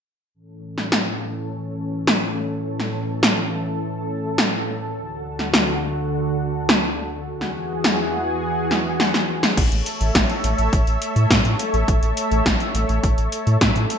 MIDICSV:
0, 0, Header, 1, 4, 480
1, 0, Start_track
1, 0, Key_signature, 3, "major"
1, 0, Tempo, 576923
1, 286, Time_signature, 4, 2, 24, 8
1, 11636, End_track
2, 0, Start_track
2, 0, Title_t, "Analog synth pad"
2, 0, Program_c, 0, 89
2, 287, Note_on_c, 0, 45, 75
2, 287, Note_on_c, 0, 52, 72
2, 287, Note_on_c, 0, 61, 69
2, 287, Note_on_c, 0, 69, 89
2, 4093, Note_off_c, 0, 45, 0
2, 4093, Note_off_c, 0, 52, 0
2, 4093, Note_off_c, 0, 61, 0
2, 4126, Note_on_c, 0, 38, 78
2, 4126, Note_on_c, 0, 50, 69
2, 4127, Note_on_c, 0, 66, 73
2, 6013, Note_off_c, 0, 69, 0
2, 6027, Note_off_c, 0, 38, 0
2, 6027, Note_off_c, 0, 50, 0
2, 6027, Note_off_c, 0, 66, 0
2, 6046, Note_on_c, 0, 52, 73
2, 6047, Note_on_c, 0, 40, 78
2, 6047, Note_on_c, 0, 66, 71
2, 6047, Note_on_c, 0, 68, 90
2, 7947, Note_off_c, 0, 40, 0
2, 7947, Note_off_c, 0, 52, 0
2, 7947, Note_off_c, 0, 68, 0
2, 7948, Note_off_c, 0, 66, 0
2, 7968, Note_on_c, 0, 57, 79
2, 7968, Note_on_c, 0, 69, 74
2, 7968, Note_on_c, 0, 73, 70
2, 7968, Note_on_c, 0, 76, 90
2, 11636, Note_off_c, 0, 57, 0
2, 11636, Note_off_c, 0, 69, 0
2, 11636, Note_off_c, 0, 73, 0
2, 11636, Note_off_c, 0, 76, 0
2, 11636, End_track
3, 0, Start_track
3, 0, Title_t, "Analog synth bass"
3, 0, Program_c, 1, 38
3, 7966, Note_on_c, 1, 33, 99
3, 8050, Note_off_c, 1, 33, 0
3, 8086, Note_on_c, 1, 33, 80
3, 8170, Note_off_c, 1, 33, 0
3, 8326, Note_on_c, 1, 33, 80
3, 8411, Note_off_c, 1, 33, 0
3, 8445, Note_on_c, 1, 33, 103
3, 8530, Note_off_c, 1, 33, 0
3, 8685, Note_on_c, 1, 33, 97
3, 8770, Note_off_c, 1, 33, 0
3, 8806, Note_on_c, 1, 33, 80
3, 8890, Note_off_c, 1, 33, 0
3, 8925, Note_on_c, 1, 33, 104
3, 9010, Note_off_c, 1, 33, 0
3, 9045, Note_on_c, 1, 33, 77
3, 9130, Note_off_c, 1, 33, 0
3, 9285, Note_on_c, 1, 45, 81
3, 9370, Note_off_c, 1, 45, 0
3, 9405, Note_on_c, 1, 45, 103
3, 9490, Note_off_c, 1, 45, 0
3, 9524, Note_on_c, 1, 45, 74
3, 9610, Note_off_c, 1, 45, 0
3, 9764, Note_on_c, 1, 33, 81
3, 9850, Note_off_c, 1, 33, 0
3, 9885, Note_on_c, 1, 33, 98
3, 9970, Note_off_c, 1, 33, 0
3, 10004, Note_on_c, 1, 33, 76
3, 10090, Note_off_c, 1, 33, 0
3, 10245, Note_on_c, 1, 33, 81
3, 10330, Note_off_c, 1, 33, 0
3, 10365, Note_on_c, 1, 33, 96
3, 10450, Note_off_c, 1, 33, 0
3, 10604, Note_on_c, 1, 33, 91
3, 10689, Note_off_c, 1, 33, 0
3, 10725, Note_on_c, 1, 33, 82
3, 10810, Note_off_c, 1, 33, 0
3, 10846, Note_on_c, 1, 33, 102
3, 10930, Note_off_c, 1, 33, 0
3, 10965, Note_on_c, 1, 33, 77
3, 11050, Note_off_c, 1, 33, 0
3, 11205, Note_on_c, 1, 45, 77
3, 11290, Note_off_c, 1, 45, 0
3, 11325, Note_on_c, 1, 45, 104
3, 11410, Note_off_c, 1, 45, 0
3, 11446, Note_on_c, 1, 45, 75
3, 11531, Note_off_c, 1, 45, 0
3, 11636, End_track
4, 0, Start_track
4, 0, Title_t, "Drums"
4, 646, Note_on_c, 9, 38, 37
4, 729, Note_off_c, 9, 38, 0
4, 765, Note_on_c, 9, 38, 113
4, 849, Note_off_c, 9, 38, 0
4, 1726, Note_on_c, 9, 38, 112
4, 1809, Note_off_c, 9, 38, 0
4, 2326, Note_on_c, 9, 38, 38
4, 2409, Note_off_c, 9, 38, 0
4, 2686, Note_on_c, 9, 38, 115
4, 2769, Note_off_c, 9, 38, 0
4, 3646, Note_on_c, 9, 38, 120
4, 3729, Note_off_c, 9, 38, 0
4, 4486, Note_on_c, 9, 38, 37
4, 4569, Note_off_c, 9, 38, 0
4, 4605, Note_on_c, 9, 38, 122
4, 4689, Note_off_c, 9, 38, 0
4, 5566, Note_on_c, 9, 38, 124
4, 5649, Note_off_c, 9, 38, 0
4, 6166, Note_on_c, 9, 38, 39
4, 6249, Note_off_c, 9, 38, 0
4, 6525, Note_on_c, 9, 38, 117
4, 6609, Note_off_c, 9, 38, 0
4, 7246, Note_on_c, 9, 38, 59
4, 7329, Note_off_c, 9, 38, 0
4, 7486, Note_on_c, 9, 38, 75
4, 7569, Note_off_c, 9, 38, 0
4, 7606, Note_on_c, 9, 38, 70
4, 7689, Note_off_c, 9, 38, 0
4, 7846, Note_on_c, 9, 38, 82
4, 7929, Note_off_c, 9, 38, 0
4, 7965, Note_on_c, 9, 36, 107
4, 7966, Note_on_c, 9, 42, 69
4, 7966, Note_on_c, 9, 49, 93
4, 8049, Note_off_c, 9, 36, 0
4, 8049, Note_off_c, 9, 42, 0
4, 8049, Note_off_c, 9, 49, 0
4, 8086, Note_on_c, 9, 42, 42
4, 8169, Note_off_c, 9, 42, 0
4, 8205, Note_on_c, 9, 42, 96
4, 8289, Note_off_c, 9, 42, 0
4, 8326, Note_on_c, 9, 42, 42
4, 8409, Note_off_c, 9, 42, 0
4, 8445, Note_on_c, 9, 36, 107
4, 8445, Note_on_c, 9, 38, 119
4, 8445, Note_on_c, 9, 42, 65
4, 8528, Note_off_c, 9, 36, 0
4, 8528, Note_off_c, 9, 38, 0
4, 8528, Note_off_c, 9, 42, 0
4, 8566, Note_on_c, 9, 42, 40
4, 8649, Note_off_c, 9, 42, 0
4, 8686, Note_on_c, 9, 42, 98
4, 8769, Note_off_c, 9, 42, 0
4, 8806, Note_on_c, 9, 42, 43
4, 8889, Note_off_c, 9, 42, 0
4, 8925, Note_on_c, 9, 36, 123
4, 8926, Note_on_c, 9, 42, 67
4, 9008, Note_off_c, 9, 36, 0
4, 9009, Note_off_c, 9, 42, 0
4, 9046, Note_on_c, 9, 42, 40
4, 9129, Note_off_c, 9, 42, 0
4, 9166, Note_on_c, 9, 42, 94
4, 9249, Note_off_c, 9, 42, 0
4, 9286, Note_on_c, 9, 42, 41
4, 9369, Note_off_c, 9, 42, 0
4, 9405, Note_on_c, 9, 36, 115
4, 9406, Note_on_c, 9, 38, 121
4, 9406, Note_on_c, 9, 42, 69
4, 9488, Note_off_c, 9, 36, 0
4, 9489, Note_off_c, 9, 38, 0
4, 9489, Note_off_c, 9, 42, 0
4, 9526, Note_on_c, 9, 42, 39
4, 9610, Note_off_c, 9, 42, 0
4, 9646, Note_on_c, 9, 42, 93
4, 9729, Note_off_c, 9, 42, 0
4, 9766, Note_on_c, 9, 42, 39
4, 9850, Note_off_c, 9, 42, 0
4, 9885, Note_on_c, 9, 36, 114
4, 9886, Note_on_c, 9, 42, 72
4, 9968, Note_off_c, 9, 36, 0
4, 9969, Note_off_c, 9, 42, 0
4, 10006, Note_on_c, 9, 42, 41
4, 10089, Note_off_c, 9, 42, 0
4, 10126, Note_on_c, 9, 42, 102
4, 10209, Note_off_c, 9, 42, 0
4, 10246, Note_on_c, 9, 42, 41
4, 10329, Note_off_c, 9, 42, 0
4, 10365, Note_on_c, 9, 36, 120
4, 10366, Note_on_c, 9, 38, 121
4, 10366, Note_on_c, 9, 42, 69
4, 10449, Note_off_c, 9, 36, 0
4, 10449, Note_off_c, 9, 38, 0
4, 10449, Note_off_c, 9, 42, 0
4, 10485, Note_on_c, 9, 42, 42
4, 10568, Note_off_c, 9, 42, 0
4, 10605, Note_on_c, 9, 42, 93
4, 10689, Note_off_c, 9, 42, 0
4, 10725, Note_on_c, 9, 42, 42
4, 10808, Note_off_c, 9, 42, 0
4, 10845, Note_on_c, 9, 36, 117
4, 10845, Note_on_c, 9, 42, 74
4, 10928, Note_off_c, 9, 36, 0
4, 10928, Note_off_c, 9, 42, 0
4, 10965, Note_on_c, 9, 42, 41
4, 11048, Note_off_c, 9, 42, 0
4, 11085, Note_on_c, 9, 42, 93
4, 11168, Note_off_c, 9, 42, 0
4, 11206, Note_on_c, 9, 42, 41
4, 11289, Note_off_c, 9, 42, 0
4, 11325, Note_on_c, 9, 36, 124
4, 11325, Note_on_c, 9, 38, 123
4, 11325, Note_on_c, 9, 42, 69
4, 11408, Note_off_c, 9, 38, 0
4, 11408, Note_off_c, 9, 42, 0
4, 11409, Note_off_c, 9, 36, 0
4, 11445, Note_on_c, 9, 42, 40
4, 11529, Note_off_c, 9, 42, 0
4, 11565, Note_on_c, 9, 42, 90
4, 11636, Note_off_c, 9, 42, 0
4, 11636, End_track
0, 0, End_of_file